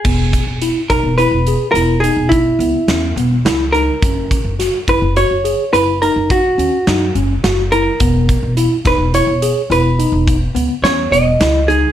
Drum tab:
CC |x-------------|--------------|--------------|
HH |-xxxxxxxxxxxxx|xxxxxxxxxxxxxx|xxxxxxxxxxxxxx|
SD |----------o-o-|--o-------o-o-|---o------o-o-|
BD |oo-o----o-----|oo-o----o-----|oo-o----o-----|